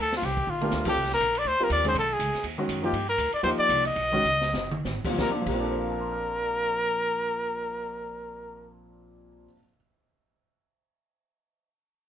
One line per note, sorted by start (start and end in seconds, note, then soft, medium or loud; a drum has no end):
0.00 0.22 D2 medium
0.00 0.13 A4 medium
0.12 snare medium
0.17 0.27 F4 medium
0.22 0.46 C2 medium
0.22 0.51 G4 medium
0.22 kick soft
0.22 snare soft
0.22 hi-hat pedal soft
0.22 ride medium
0.37 kick medium
0.47 0.71 A#1 medium
0.47 0.88 F4 medium
0.47 mid tom soft
0.61 0.85 A3 medium
0.61 0.85 D4 medium
0.61 0.85 G4 medium
0.61 0.86 A#4 medium
0.61 mid tom medium
0.71 0.95 D2 medium
0.71 snare soft
0.71 hi-hat pedal medium
0.85 0.96 G3 medium
0.85 0.96 C4 medium
0.85 0.96 F4 medium
0.85 1.11 G4 medium
0.85 0.96 A4 medium
0.85 kick medium
0.85 crash medium
0.96 1.20 C2 medium
0.96 kick soft
1.04 snare soft
1.12 1.40 A#4 medium
1.12 snare soft
1.20 1.45 A#1 medium
1.20 kick soft
1.20 hi-hat pedal medium
1.20 ride medium
1.35 1.49 D5 medium
1.35 ride medium
1.45 1.59 D2 medium
1.45 1.65 C5 medium
1.45 kick soft
1.60 1.83 G3 medium
1.60 1.84 C4 medium
1.60 1.84 F4 medium
1.60 1.84 A#4 medium
1.60 1.72 A#4 medium
1.60 muted upright bass stroke soft
1.70 1.94 D#2 medium
1.70 1.85 D5 medium
1.70 kick soft
1.70 hi-hat pedal medium
1.70 ride medium
1.84 1.94 D#3 medium
1.84 1.94 G#3 medium
1.84 1.94 C#4 medium
1.84 1.94 G#4 medium
1.84 1.96 C5 medium
1.84 ride soft
1.95 2.19 B1 medium
1.95 2.14 A4 medium
1.95 kick soft
1.95 ride medium
2.13 2.46 G#4 medium
2.19 2.33 C#2 medium
2.19 kick soft
2.19 hi-hat pedal medium
2.19 ride medium
2.34 muted upright bass stroke soft
2.34 snare soft
2.34 ride soft
2.44 2.68 D#2 medium
2.44 kick soft
2.44 ride medium
2.58 2.81 D#3 medium
2.58 2.82 G#3 medium
2.58 2.82 C#4 medium
2.58 2.82 F#4 medium
2.68 2.92 F#2 medium
2.68 kick soft
2.68 hi-hat pedal medium
2.68 ride medium
2.82 2.92 F3 medium
2.82 2.92 A#3 soft
2.82 2.92 D#4 medium
2.82 2.93 F4 medium
2.82 3.07 G4 medium
2.93 3.17 G2 medium
2.93 kick soft
2.93 ride medium
3.09 3.32 A#4 medium
3.18 3.32 D2 medium
3.18 kick soft
3.18 hi-hat pedal medium
3.18 ride medium
3.32 3.43 D5 medium
3.32 muted upright bass stroke soft
3.32 ride soft
3.43 3.57 D#2 medium
3.43 3.82 F3 medium
3.43 3.82 A#3 medium
3.43 3.82 D#4 medium
3.43 3.82 G4 medium
3.43 3.50 C5 medium
3.43 kick soft
3.43 ride medium
3.58 3.83 D5 loud
3.58 muted upright bass stroke soft
3.69 3.95 C2 medium
3.69 kick soft
3.69 hi-hat pedal medium
3.69 ride medium
3.85 4.82 D#5 loud
3.85 ride soft
3.96 4.23 B1 medium
3.96 kick soft
3.96 ride medium
4.12 4.23 D#3 medium
4.12 4.23 G#3 medium
4.12 4.23 C#4 medium
4.12 4.24 F#4 medium
4.24 4.53 C#2 medium
4.24 hi-hat pedal soft
4.41 snare soft
4.53 4.84 F#1 medium
4.53 snare medium
4.71 mid tom medium
4.85 5.03 G#1 medium
4.85 snare medium
4.85 hi-hat pedal medium
5.05 5.25 A#2 medium
5.05 5.17 D3 medium
5.05 5.18 G3 soft
5.05 5.18 C4 soft
5.05 5.18 F4 medium
5.05 kick medium
5.05 crash medium
5.13 5.28 F3 medium
5.18 5.30 A#1 medium
5.18 5.31 G3 medium
5.18 5.31 A#4 medium
5.18 kick medium
5.18 snare medium
5.25 5.34 C4 medium
5.31 9.45 A#2 medium
5.31 5.38 D4 medium
5.41 9.48 F3 medium
5.46 9.46 A#1 medium
5.46 9.51 G3 medium
5.46 8.77 A#4 medium
5.46 kick medium
5.46 crash medium
5.54 9.54 C4 medium
5.54 9.47 F4 soft
5.60 9.57 D4 medium
5.60 9.51 A4 soft
5.70 9.55 C5 soft
5.79 9.59 F5 soft
5.90 9.64 A5 soft
6.00 9.70 C6 soft
6.12 9.76 F6 soft